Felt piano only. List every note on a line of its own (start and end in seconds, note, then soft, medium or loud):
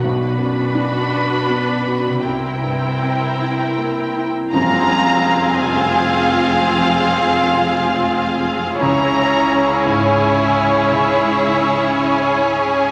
0.04 2.21 B1 soft
0.38 0.97 F#2 soft
0.75 1.34 D4 soft
1.12 1.71 F#4 soft
1.49 2.09 B3 soft
1.86 2.24 F#4 soft
2.25 4.49 C2 soft
2.63 3.24 G2 soft
3.02 3.62 C4 soft
3.41 4.01 E4 soft
3.78 4.38 A#3 soft
4.16 4.53 E4 soft
4.54 6.64 F2 medium
5.61 8.81 C3 soft
8.81 10.85 C#2 medium
9.86 12.91 G#2 soft